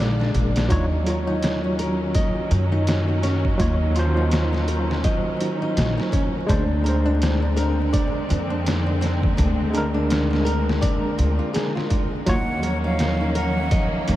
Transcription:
0.00 0.32 A#1 loud
0.00 0.66 D3 medium
0.00 0.65 G#3 loud
0.00 0.66 G#3 medium
0.00 0.73 G#3 medium
0.00 0.67 D4 medium
0.00 0.68 D4 medium
0.00 0.73 G#4 medium
0.00 0.69 A#4 loud
0.00 0.19 D5 medium
0.00 0.67 F5 medium
0.00 snare loud
0.20 0.28 D4 medium
0.20 snare soft
0.35 0.67 A#1 loud
0.35 kick medium
0.35 closed hi-hat medium
0.56 0.69 D4 medium
0.56 snare loud
0.56 closed hi-hat medium
0.68 2.12 D#2 medium
0.68 6.45 D#3 medium
0.68 0.83 F#3 medium
0.68 6.45 F#3 medium
0.68 14.16 A#3 medium
0.68 6.45 C#4 medium
0.68 1.05 D#4 medium
0.68 0.84 F4 medium
0.68 14.16 A#4 medium
0.68 0.85 C#5 loud
0.68 kick loud
0.68 closed hi-hat medium
1.03 3.54 F#3 medium
1.03 3.56 F4 medium
1.03 1.27 A#4 medium
1.03 closed hi-hat medium
1.10 3.58 C#5 medium
1.27 1.62 D#4 loud
1.42 snare loud
1.42 closed hi-hat medium
1.64 1.78 D#4 medium
1.79 1.99 A#4 loud
1.79 closed hi-hat medium
2.15 2.50 D#5 loud
2.15 kick loud
2.15 closed hi-hat medium
2.51 3.57 F#2 loud
2.51 2.71 D#4 medium
2.51 closed hi-hat medium
2.72 3.06 D#4 loud
2.87 snare loud
2.87 closed hi-hat medium
3.08 3.23 D#4 medium
3.23 3.43 C#4 loud
3.23 snare soft
3.23 closed hi-hat medium
3.45 kick medium
3.58 5.01 D#2 loud
3.58 3.72 F#3 medium
3.58 3.94 D#4 medium
3.58 3.73 F4 medium
3.58 3.74 C#5 medium
3.58 kick loud
3.58 closed hi-hat medium
3.92 6.43 F#3 loud
3.92 6.45 F4 medium
3.92 4.16 A#4 medium
3.92 closed hi-hat medium
3.99 6.47 C5 loud
4.17 4.51 D#4 loud
4.32 snare loud
4.32 closed hi-hat medium
4.53 4.67 D#4 medium
4.53 snare soft
4.68 4.88 A#4 loud
4.68 closed hi-hat medium
4.91 snare medium
5.04 5.39 D#5 loud
5.04 kick loud
5.04 closed hi-hat medium
5.40 5.60 D#4 medium
5.40 closed hi-hat medium
5.62 5.96 D#4 loud
5.77 5.96 A#1 medium
5.77 snare loud
5.77 closed hi-hat medium
5.98 6.12 D#4 medium
5.98 snare medium
6.12 6.33 C#4 loud
6.12 kick loud
6.12 closed hi-hat medium
6.46 7.91 D2 medium
6.46 12.23 D3 medium
6.46 6.61 G#3 loud
6.46 12.23 G#3 medium
6.46 12.23 C4 medium
6.46 6.83 D4 medium
6.46 6.62 D4 medium
6.46 6.63 C5 loud
6.46 kick loud
6.46 closed hi-hat medium
6.81 9.33 G#3 medium
6.81 9.34 D4 medium
6.81 7.05 A#4 medium
6.86 9.36 C5 medium
6.86 closed hi-hat medium
7.05 7.40 D4 loud
7.22 snare loud
7.22 closed hi-hat medium
7.42 7.56 D4 medium
7.56 7.77 A#4 loud
7.56 closed hi-hat medium
7.93 8.28 D5 medium
7.93 kick loud
7.93 closed hi-hat medium
8.29 9.36 F2 medium
8.29 8.49 D4 medium
8.29 closed hi-hat medium
8.50 8.85 D4 loud
8.66 snare loud
8.66 closed hi-hat medium
8.86 9.01 D4 medium
9.01 9.22 C4 loud
9.01 snare soft
9.01 closed hi-hat medium
9.23 kick medium
9.37 10.80 D2 loud
9.37 9.72 D4 loud
9.37 kick loud
9.37 closed hi-hat medium
9.70 12.22 G#3 loud
9.70 12.23 D4 medium
9.70 9.94 A#4 medium
9.75 12.25 A#4 loud
9.75 closed hi-hat medium
9.94 10.29 D4 loud
10.10 snare loud
10.10 closed hi-hat medium
10.30 10.45 D4 medium
10.30 snare soft
10.45 10.66 A#4 loud
10.45 closed hi-hat medium
10.69 snare medium
10.81 11.01 D5 medium
10.81 kick loud
10.81 closed hi-hat medium
11.18 11.38 D2 medium
11.18 11.38 F4 medium
11.18 closed hi-hat medium
11.39 11.53 F4 medium
11.53 11.73 G#4 medium
11.53 snare loud
11.53 closed hi-hat medium
11.75 11.89 F4 medium
11.75 snare soft
11.90 12.10 F4 medium
11.90 kick medium
11.90 closed hi-hat medium
12.26 13.69 D#2 loud
12.26 14.16 D#3 medium
12.26 12.40 F#3 loud
12.26 14.16 A#3 medium
12.26 14.16 C#4 medium
12.26 12.62 D#4 loud
12.26 12.41 F4 medium
12.26 12.42 C#5 loud
12.26 12.78 F#5 loud
12.26 kick loud
12.26 closed hi-hat medium
12.60 14.16 F3 medium
12.60 14.16 F#3 medium
12.60 12.83 A#4 medium
12.60 closed hi-hat medium
12.67 14.16 C#5 medium
12.84 13.18 D#4 loud
12.84 13.32 F5 medium
12.99 snare loud
12.99 closed hi-hat medium
13.21 13.35 D#4 medium
13.35 13.56 A#4 loud
13.35 13.87 F#5 loud
13.35 closed hi-hat medium
13.71 14.06 D#5 medium
13.71 kick loud
13.71 closed hi-hat medium
14.08 14.16 F#2 loud
14.08 14.16 D#4 medium
14.08 closed hi-hat medium

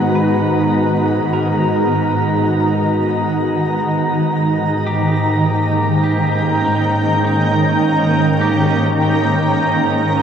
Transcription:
0.00 3.61 G#2 medium
0.00 10.22 D#3 medium
0.00 3.67 G#3 medium
0.00 10.22 G#3 medium
0.00 3.67 B3 medium
0.00 10.22 D#4 medium
0.00 3.68 F#4 medium
0.00 0.14 B4 medium
0.00 10.22 A#5 medium
0.00 10.22 A#5 soft
0.15 1.33 B4 medium
1.33 3.05 A#4 medium
3.66 10.22 G#2 medium
4.84 10.22 A#3 medium
4.84 6.02 G4 medium
5.03 10.22 G5 medium
5.58 10.22 C#4 medium
6.04 6.64 G4 medium
6.65 7.24 D#4 medium
7.25 8.44 D#4 medium
8.41 10.22 G4 medium

